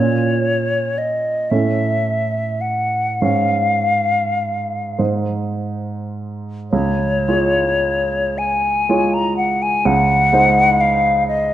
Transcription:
Already playing: A#2 C#4 F4 C#5
0.98 D#5
1.50 A2 C#4 A4 E5
2.61 F#5
3.22 G#2 C#4 C#5 F5
4.99 G#2 D#4 C5
6.71 C#2 C#5
7.28 G#3 F4 C#5
8.38 G#5
8.89 G#3 F4 C#5
9.14 A#5
9.37 F#5
9.62 G#5
9.85 C#2 F#5
10.33 G#3 D#4 C5
10.81 F5
11.28 D#5

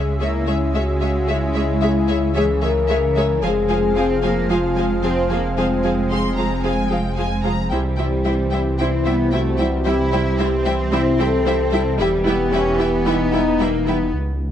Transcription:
Already playing: C#2 C#3 G#3 C#4 G#4 E5
0.20 G#3 A#3 E4 G#4 C#5 E5
0.46 G#3 G#4 C#5 E5
0.74 G#3 F#4 G#4 C#5 E5
1.01 G#3 G#4 C#5 E5
1.28 G#3 E4 G#4 C#5 E5
1.54 G#3 G#4 C#5 E5
1.81 G#3 G#4 C#5 E5
2.08 G#3 G#4 C#5 E5
2.35 E3 G#3 G#4 C#5 E5
2.62 G#3 G#4 A#4 C#5 E5
2.88 G#3 G#4 C#5 E5
3.15 G#3 G#4 C#5 E5
3.41 F1 F3 G#3 C4 G#4 C5 F5 G#5
3.69 F3 G#4 C5 F5 G#5
3.96 F3 C4 G#4 C5 F5 G#5
4.22 F3 A#3 G#4 C5 F5 G#5
4.50 F3 G#3 F4 G#4 C5 F5 G#5
4.76 F3 G#4 C5 F5 G#5
5.03 F3 C4 G#4 C5 F5 G#5
5.30 F3 A#3 G#4 C5 F5 G#5
5.57 F3 G#3 C4 G#4 C5 F5 G#5
5.83 F3 G#4 C5 F5 G#5
6.10 F3 G#4 C5 F5 C6
6.37 F3 G#4 C5 F5 A#5
6.64 F3 G#4 C5 F5 G#5
6.90 F3 G#4 C5 F5 G5
7.16 F3 G#4 C5 F5 G#5
7.44 F3 G#4 C5 F5 A#5
7.70 C2 C3 E3 G3 C4 E4 G4 C5 E5 G5
7.97 G3 E4 C5 E5 G5
8.24 G3 E4 C5 E5 G5
8.51 G3 E4 C5 E5 G5
8.78 G3 C4 E4 C5 E5 G5
9.05 G3 B3 E4 C5 E5 G5
9.31 G3 A3 E4 F#4 C5 E5 G5
9.58 G3 E4 C5 E5 G5
9.84 G3 E4 G4 C5 E5 G5
10.12 G3 E4 C5 E5 G5
10.39 G3 C4 E4 C5 E5 G5
10.65 G3 E4 C5 E5 G5
10.91 G3 E4 C5 E5 G5
11.19 G3 E4 A4 C5 E5 G5
11.46 G3 E4 C5 E5 G5
11.72 G3 E4 C5 E5 G5
11.99 E1 E3 G3 B3 E4 G4 B4 E5 G5
12.25 G3 B3 E4 B4 E5 G5
12.52 G3 C#4 E4 B4 E5 G5
12.78 G3 B3 E4 B4 E5 G5
13.06 G3 D#4 E4 B4 E5 G5
13.32 G3 E4 B4 E5 G5
13.60 G3 A#3 E4 B4 E5 G5
13.87 G3 B3 E4 B4 E5 G5
14.13 C#2

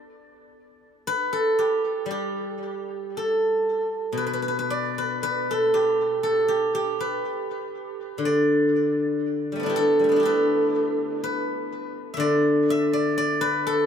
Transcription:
Already playing: B3
1.07 B4
1.33 A4
1.59 G4
2.06 G3
2.11 G4
3.17 A4
4.13 B2
4.17 B4
4.26 B4
4.33 B4
4.42 B4
4.48 B4
4.59 B4
4.70 D5
4.98 B4
5.23 B4
5.51 A4
5.74 G4
6.23 A4
6.48 G4
6.75 G4
7.00 B4
8.18 D3
8.25 D5
9.52 G3 A3
9.60 B3 D4
9.66 E4 G4
9.76 A4
9.99 G3
10.04 A3
10.09 B3 D4
10.16 E4 G4
10.23 A4 B4
11.24 B4
12.14 D3 E5
12.20 D5
12.70 E5
12.93 D5
13.18 D5
13.41 B4
13.67 A4

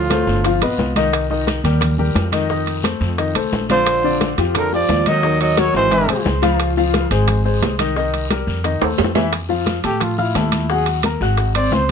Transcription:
Already playing: D2 A2 F4
0.10 A3 A4 C5, high bongo, high conga, high timbale, short guiro, maracas
0.27 G1, high bongo, short guiro, maracas
0.44 F3 F4 F5, high bongo, high conga, high timbale, long guiro, maracas
0.61 A#1 B3 B4 D#5, high bongo, high conga, high timbale
0.78 C2, high bongo, low bongo, high conga, short guiro, maracas
0.96 D#3 D#4 D#5, high bongo, high conga, high timbale, short guiro, maracas
1.12 high bongo, high conga, high timbale, long guiro, maracas
1.30 D#3 D#4 D#5, high conga
1.47 high bongo, high conga, high timbale, short guiro, maracas
1.64 D#2 G3 G4 A#4, high bongo, high conga, high timbale, short guiro, maracas
1.81 high bongo, high conga, low conga, high timbale, long guiro, maracas
1.98 G3 G4 A#4, high bongo, high conga, low conga, maracas
2.15 F2, high bongo, low bongo, high conga, high timbale, short guiro, maracas
2.32 D#3 D#4 D#5, high bongo, high conga, high timbale, short guiro, maracas
2.49 D#3 D#4 D#5, high bongo, high conga, long guiro, maracas
2.67 high conga, high timbale, maracas
2.83 A3 A4 C5, high bongo, high conga, high timbale, short guiro, maracas
3.01 F2, high bongo, short guiro, maracas
3.18 D#3 D#4 D#5, high bongo, high conga, high timbale, long guiro, maracas
3.35 C2 A3 A4 C5, high bongo, high conga, high timbale
3.52 A#1, high bongo, low bongo, high conga, short guiro, maracas
3.69 D3 F3 D4 C5 D5, high bongo, high conga, high timbale, short guiro, maracas
3.86 high bongo, high conga, high timbale, long guiro, maracas
4.04 D3 D4 D5, high conga
4.21 high bongo, high conga, high timbale, short guiro, maracas
4.38 F2 F3 F4 G4, high bongo, high conga, high timbale, short guiro, maracas
4.55 D3 A#4, high bongo, high conga, low conga, high timbale, long guiro, maracas
4.72 F3 F4 G4 D5, high bongo, high conga, maracas
4.89 D#2, high bongo, low bongo, high conga, high timbale, short guiro, maracas
5.06 D#3 F#3 D#4 D#5, high bongo, high conga, high timbale, short guiro, maracas
5.23 D#3 D#4 D#5, high bongo, high conga, long guiro, maracas
5.41 F#3 D#5, high conga, high timbale, maracas
5.57 F#3 F#4 A#4 C#5, high bongo, high conga, high timbale, short guiro, maracas
5.74 G#1 E3 C5, high bongo, short guiro, maracas
5.91 E3 E4 E5, high bongo, high conga, high timbale, long guiro, maracas
6.08 B1 G#3 G#4 C5, high bongo, high conga, high timbale, maracas
6.25 C#2, high bongo, low bongo, high conga, short guiro, maracas
6.42 F3 F4 F5, high bongo, high conga, high timbale, short guiro, maracas
6.59 high bongo, high timbale, long guiro, maracas
6.77 F3 F4 F5, high conga, maracas
6.94 high bongo, high conga, high timbale, short guiro, maracas
7.11 G#1 G#3 G#4 C5, high bongo, high conga, high timbale, short guiro, maracas
7.28 high bongo, high conga, low conga, high timbale, long guiro, maracas
7.45 G#3 G#4 C5, high bongo, high conga, maracas
7.62 C2, high bongo, low bongo, high conga, high timbale, low timbale, short guiro, maracas
7.79 D#3 D#4 D#5, high bongo, high conga, high timbale, short guiro, maracas
7.96 D#3 D#4 D#5, high bongo, long guiro, maracas
8.14 high conga, high timbale
8.30 G3 G4 A#4, high bongo, high conga, high timbale, short guiro, maracas
8.47 F2, high bongo, short guiro, maracas
8.64 D#3 D#4 D#5, high bongo, high conga, high timbale, long guiro, maracas
8.81 D#2 A3 A4 C5, high bongo, high conga, high timbale
8.98 F2, high conga, low timbale, short guiro, maracas
9.04 low bongo
9.15 E3 E4 E5, low bongo, high conga, low timbale, short guiro, maracas
9.33 high bongo, high conga, high timbale, long guiro, maracas
9.49 F3 F4 F5, high conga
9.66 high bongo, high conga, high timbale, short guiro, maracas
9.84 A2 A3 G4 A4 A5, high bongo, high conga, high timbale, short guiro, maracas
10.00 F4, high bongo, high conga, low conga, high timbale, long guiro, maracas
10.18 E4 F4 F5 F6, high bongo, high conga, low conga, maracas
10.35 D#2 A3 A4 A5, high bongo, low bongo, high conga, high timbale, short guiro, maracas
10.52 high bongo, high conga, high timbale, short guiro, maracas
10.69 F#3 F#4 G#4 F#5, high bongo, high conga, long guiro, maracas
10.86 high conga, high timbale, maracas
11.03 A#3 A#4 A#5, high bongo, high conga, high timbale, short guiro, maracas
11.21 G#1 F#4 F#5 F#6, high bongo, short guiro, maracas
11.37 high bongo, high conga, high timbale, long guiro, maracas
11.55 C4 C5 D5 C6, high bongo, high conga, high timbale
11.72 C#2 C5, high bongo, low bongo, high conga, short guiro, maracas

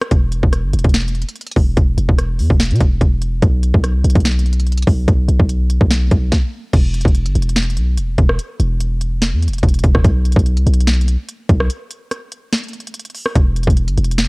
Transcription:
0.02 cross-stick, closed hi-hat
0.11 E1, kick, closed hi-hat
0.32 closed hi-hat
0.43 E1, kick
0.53 cross-stick, closed hi-hat
0.64 G1
0.73 E1, closed hi-hat
0.79 closed hi-hat
0.84 E1, kick, closed hi-hat
0.89 closed hi-hat
0.94 snare, closed hi-hat
1.01 closed hi-hat
1.08 closed hi-hat
1.15 closed hi-hat
1.22 closed hi-hat
1.29 closed hi-hat
1.36 closed hi-hat
1.41 closed hi-hat
1.47 closed hi-hat
1.51 closed hi-hat
1.56 E1, kick, open hi-hat
1.77 E1, kick, closed hi-hat
1.98 E1, closed hi-hat
2.09 E1, kick
2.18 cross-stick, closed hi-hat
2.39 E2, open hi-hat
2.50 E1, kick
2.60 snare, closed hi-hat
2.65 closed hi-hat
2.71 B2, closed hi-hat
2.75 closed hi-hat
2.80 E1, kick, closed hi-hat
3.01 E1, kick, closed hi-hat
3.22 closed hi-hat
3.42 B1, kick, closed hi-hat
3.63 closed hi-hat
3.74 B1, kick
3.84 cross-stick, closed hi-hat
3.95 C2
4.04 B1, closed hi-hat
4.10 closed hi-hat
4.15 B1, kick, closed hi-hat
4.20 closed hi-hat
4.25 snare, closed hi-hat
4.32 closed hi-hat
4.39 closed hi-hat
4.46 closed hi-hat
4.53 closed hi-hat
4.60 closed hi-hat
4.67 closed hi-hat
4.72 closed hi-hat
4.77 closed hi-hat
4.82 closed hi-hat
4.87 B1, kick, open hi-hat
5.08 B1, kick, closed hi-hat
5.28 B1, closed hi-hat
5.40 B1, kick
5.49 closed hi-hat
5.70 closed hi-hat
5.81 B1, kick
5.91 snare, closed hi-hat
6.11 B1, kick, closed hi-hat
6.32 kick, snare
6.73 E1, kick, closed hi-hat, crash
6.94 closed hi-hat
7.01 closed hi-hat
7.05 E1, kick, closed hi-hat
7.15 closed hi-hat
7.26 G1, closed hi-hat
7.35 E1, closed hi-hat
7.42 closed hi-hat
7.49 closed hi-hat
7.56 snare, closed hi-hat
7.63 closed hi-hat
7.70 closed hi-hat
7.77 B1, closed hi-hat
7.98 E1, closed hi-hat
8.18 E1, kick, closed hi-hat
8.29 cross-stick
8.39 closed hi-hat
8.60 E1, closed hi-hat
8.80 closed hi-hat
9.01 closed hi-hat
9.22 snare, closed hi-hat
9.33 E2
9.42 closed hi-hat
9.48 E1, closed hi-hat
9.53 closed hi-hat
9.58 closed hi-hat
9.63 E1, kick, closed hi-hat
9.69 closed hi-hat
9.74 closed hi-hat
9.79 closed hi-hat
9.84 E1, kick, closed hi-hat
9.95 E1, kick, cross-stick
10.04 B1, kick, closed hi-hat
10.25 closed hi-hat
10.32 closed hi-hat
10.36 B1, kick, closed hi-hat
10.46 closed hi-hat
10.57 C2, closed hi-hat
10.67 B1, closed hi-hat
10.74 closed hi-hat
10.80 closed hi-hat
10.87 snare, closed hi-hat
10.94 closed hi-hat
11.01 closed hi-hat
11.08 closed hi-hat
11.29 closed hi-hat
11.49 B1, kick, closed hi-hat
11.60 cross-stick
11.70 closed hi-hat
11.91 closed hi-hat
12.11 cross-stick, closed hi-hat
12.32 closed hi-hat
12.53 snare, closed hi-hat
12.58 closed hi-hat
12.64 closed hi-hat
12.68 closed hi-hat
12.73 closed hi-hat
12.80 closed hi-hat
12.87 closed hi-hat
12.94 closed hi-hat
12.99 closed hi-hat
13.05 closed hi-hat
13.10 closed hi-hat
13.15 open hi-hat
13.26 cross-stick
13.35 E1, kick, closed hi-hat
13.56 closed hi-hat
13.63 closed hi-hat
13.67 E1, kick, closed hi-hat
13.77 closed hi-hat
13.88 G1, closed hi-hat
13.97 E1, closed hi-hat
14.04 closed hi-hat
14.11 closed hi-hat
14.18 snare, closed hi-hat
14.25 closed hi-hat

